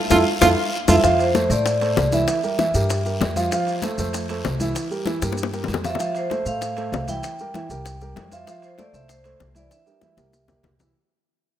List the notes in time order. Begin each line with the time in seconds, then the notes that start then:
0.10 F2 E4 F4 A4, high bongo, high conga, high timbale, long guiro, maracas
0.41 F2 E4 F4 A4, high bongo, high conga, high timbale, long guiro, maracas
0.88 F2 E4 F4 A4 E5, high bongo, high conga, high timbale, long guiro, maracas
1.03 F2 F3 F4 F5, high bongo, high timbale, long guiro, maracas
1.19 C5, high conga, high timbale, maracas
1.34 A3 A4 C5, high bongo, high conga, high timbale, low timbale, short guiro, maracas
1.50 A2 A3 A4 C5 D5, high bongo, short guiro, maracas
1.66 high bongo, high conga, high timbale, long guiro, maracas
1.81 A3 A4 C5, high bongo, high conga, high timbale, maracas
1.97 C2, high bongo, low bongo, low timbale, short guiro, maracas
2.12 E3 E4 E5, high bongo, high conga, high timbale, short guiro, maracas
2.28 high bongo, high conga, high timbale, long guiro, maracas
2.43 G3 G4 A#4, high conga, maracas
2.59 E3 E4 E5, high bongo, high conga, high timbale, low timbale, short guiro, maracas
2.74 G2 G3 G4 A#4, high bongo, high conga, short guiro, maracas
2.90 high bongo, high conga, high timbale, long guiro, maracas
3.06 G3 G4 A#4, high bongo, high conga, maracas
3.21 F2, high bongo, low bongo, high conga, high timbale, low timbale, short guiro, maracas
3.36 F3 F4 F5, high bongo, high conga, high timbale, short guiro, maracas
3.51 F3 F4 F5, high bongo, high conga, high timbale, long guiro, maracas
3.67 high conga, high timbale, maracas
3.82 A3 A4 C5, high bongo, high conga, high timbale, low timbale, short guiro, maracas
3.98 F2 A3 A4 C5, high bongo, short guiro, maracas
4.13 high bongo, high conga, high timbale, long guiro, maracas
4.29 A3 A4 C5, high bongo, high conga, high timbale, maracas
4.45 C2, high bongo, low bongo, high conga, low timbale, short guiro, maracas
4.60 E3 E4 E5, high bongo, high conga, high timbale, short guiro, maracas
4.75 high bongo, high conga, high timbale, long guiro, maracas
4.90 G3 G4 A#4, high conga, maracas
5.06 E3 E4 E5, high bongo, high conga, high timbale, low timbale, short guiro, maracas
5.21 G2 G3 G4 A#4, high bongo, high conga, short guiro, maracas
5.32 high bongo
5.37 high conga, high timbale, long guiro, maracas
5.43 high bongo
5.53 G3 G4 A#4, high bongo, high conga, maracas
5.64 low bongo
5.68 F2, high conga, high timbale, low timbale, short guiro, maracas
5.74 low bongo
5.84 F3 F4 E5 F5, low bongo, high timbale, short guiro, maracas
5.95 low bongo, high timbale
5.99 F3 F4 F5, high bongo, high conga, maracas
6.15 C5, high conga, high timbale, maracas
6.30 A3 A4 C5, high bongo, high conga, high timbale, low timbale, maracas
6.46 A2 A3 A4 C5 F5, high bongo, maracas
6.61 high bongo, high conga, high timbale, maracas
6.77 A3 A4 C5, high bongo, high conga, high timbale, maracas
6.92 C2, high bongo, low bongo, high conga, low timbale, maracas
7.08 E3 E4 E5 G5, high bongo, high conga, high timbale, maracas
7.23 high bongo, high conga, high timbale, maracas
7.39 G3 G4 A#4, high conga, maracas
7.54 E3 E4 E5, high bongo, high conga, high timbale, low timbale, maracas
7.70 C2 G3 G4 A#4, high bongo, high conga, maracas
7.85 high bongo, high conga, high timbale, maracas
8.01 G3 G4 A#4, high bongo, high conga, maracas
8.16 F2, high bongo, low bongo, high conga, high timbale, low timbale, maracas
8.32 F3 F4 E5 F5, high bongo, high conga, high timbale, maracas
8.47 F3 F4 F5, high bongo, high conga, high timbale, maracas
8.62 C5, high conga, high timbale, maracas
8.78 A3 A4 C5 D5, high bongo, high conga, high timbale, low timbale, maracas
8.93 C2 A3 A4 C5 E5, high bongo, maracas
9.08 C5, high bongo, high conga, high timbale, maracas
9.24 A3 A4 C5, high bongo, high conga, high timbale, maracas
9.40 C2, high bongo, low bongo, high conga, low timbale, maracas
9.55 E3 E4 D5 E5, high bongo, high conga, high timbale, maracas
9.71 E5, high bongo, high conga, high timbale, maracas
9.86 G3 G4 A#4, high conga, high timbale, maracas
10.01 E3 E4 E5, high bongo, high conga, low timbale, maracas
10.17 C2 G3 G4 A#4, high bongo, high conga, low timbale, maracas
10.33 high bongo, maracas
10.48 G3 G4 A#4, low bongo, low conga, low timbale, maracas
10.63 C2, low bongo, low conga, low timbale, maracas
10.79 E3 E4 E5, low bongo, low conga, low timbale, maracas